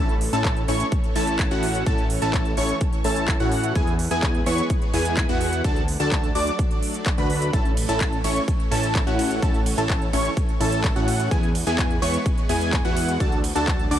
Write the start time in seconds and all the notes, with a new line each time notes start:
Already playing: A1 E3 A3 C#4 E4 A4 C#5 A5
0.09 closed hi-hat
0.21 open hi-hat
0.33 A1 C#4 E4 A4 A5, closed hi-hat
0.45 kick, clap, closed hi-hat
0.57 closed hi-hat
0.68 A1 C#4 E4 C#5 C#6, open hi-hat
0.80 closed hi-hat
0.92 kick, closed hi-hat
1.04 closed hi-hat
1.16 A1 C#4 E4 A4 A5, open hi-hat
1.27 closed hi-hat
1.39 kick, clap, closed hi-hat
1.51 A1 C#4 E4 F#4 F#5, closed hi-hat
1.63 open hi-hat
1.75 closed hi-hat
1.86 A1 C#4 E4 A4 A5, kick, closed hi-hat
1.98 closed hi-hat
2.10 open hi-hat
2.22 A1 C#4 E4 A4 A5, closed hi-hat
2.34 kick, clap, closed hi-hat
2.45 closed hi-hat
2.57 A1 C#4 E4 C#5 C#6, open hi-hat
2.69 closed hi-hat
2.81 kick, closed hi-hat
2.93 closed hi-hat
3.04 A1 C#4 E4 A4 A5, open hi-hat
3.16 closed hi-hat
3.28 kick, clap, closed hi-hat
3.40 A2 C#4 E4 F#4 F#5, closed hi-hat
3.52 open hi-hat
3.64 closed hi-hat
3.75 E2 G#3 B3 E4 G#4 B4 G#5, kick, closed hi-hat
3.87 closed hi-hat
3.99 open hi-hat
4.11 E2 B3 E4 G#4 G#5, closed hi-hat
4.23 kick, clap, closed hi-hat
4.35 closed hi-hat
4.46 E2 B3 E4 C#5 C#6, open hi-hat
4.58 closed hi-hat
4.70 kick, closed hi-hat
4.82 closed hi-hat
4.94 E2 B3 E4 G#4 G#5, open hi-hat
5.05 closed hi-hat
5.17 kick, clap, closed hi-hat
5.29 E2 B3 E4 F#4 F#5, closed hi-hat
5.41 open hi-hat
5.53 closed hi-hat
5.64 D2 F#3 A3 D4 F#4 A4 D5 A5, kick, closed hi-hat
5.76 closed hi-hat
5.88 open hi-hat
6.00 D2 D4 F#4 A4 A5, closed hi-hat
6.12 kick, clap, closed hi-hat
6.24 closed hi-hat
6.35 D2 D4 F#4 D5 D6, open hi-hat
6.47 closed hi-hat
6.59 kick, closed hi-hat
6.71 closed hi-hat
6.83 open hi-hat
6.94 closed hi-hat
7.06 kick, clap, closed hi-hat
7.18 D2 D4 F#4 B4 B5, closed hi-hat
7.30 open hi-hat
7.42 closed hi-hat
7.53 A1 E3 C#4 E4 A4 C#5 A5, kick, closed hi-hat
7.65 closed hi-hat
7.77 open hi-hat, ride
7.89 A1 C#4 E4 A4 A5, closed hi-hat
8.01 kick, clap, closed hi-hat
8.13 closed hi-hat
8.24 A1 C#4 E4 C#5 C#6, open hi-hat, ride
8.36 closed hi-hat
8.48 kick, closed hi-hat
8.60 closed hi-hat
8.71 A1 C#4 E4 A4 A5, open hi-hat, ride
8.84 closed hi-hat
8.95 kick, clap, closed hi-hat
9.07 A1 C#4 E4 F#4 F#5, closed hi-hat
9.19 open hi-hat, ride
9.31 closed hi-hat
9.42 A1 C#4 E4 A4 A5, kick, closed hi-hat
9.54 closed hi-hat
9.66 open hi-hat, ride
9.78 A1 C#4 E4 A4 A5, closed hi-hat
9.90 kick, clap, closed hi-hat
10.02 closed hi-hat
10.13 A1 C#4 E4 C#5 C#6, open hi-hat, ride
10.25 closed hi-hat
10.37 kick, closed hi-hat
10.49 closed hi-hat
10.60 A1 C#4 E4 A4 A5, open hi-hat, ride
10.72 closed hi-hat
10.84 kick, clap, closed hi-hat
10.96 A2 C#4 E4 F#4 F#5, closed hi-hat
11.08 open hi-hat, ride
11.20 closed hi-hat
11.31 E2 E3 G#3 B3 E4 G#4 B4 G#5, kick, closed hi-hat
11.43 closed hi-hat
11.55 open hi-hat, ride
11.67 E2 B3 E4 G#4 G#5, closed hi-hat
11.79 kick, clap, closed hi-hat
11.91 closed hi-hat
12.02 E2 B3 E4 C#5 C#6, open hi-hat, ride
12.14 closed hi-hat
12.26 kick, closed hi-hat
12.38 closed hi-hat
12.49 E2 B3 E4 G#4 G#5, open hi-hat, ride
12.61 closed hi-hat
12.73 kick, clap, closed hi-hat
12.85 E2 B3 E4 F#4 F#5, closed hi-hat
12.97 open hi-hat, ride
13.09 closed hi-hat
13.20 F#3 A3 D4 F#4 A4 D5 A5, kick, closed hi-hat
13.32 closed hi-hat
13.44 open hi-hat, ride
13.56 D2 D4 F#4 A4 A5, closed hi-hat
13.68 kick, clap, closed hi-hat
13.79 closed hi-hat
13.91 D2 D4 F#4 D5 D6, open hi-hat, ride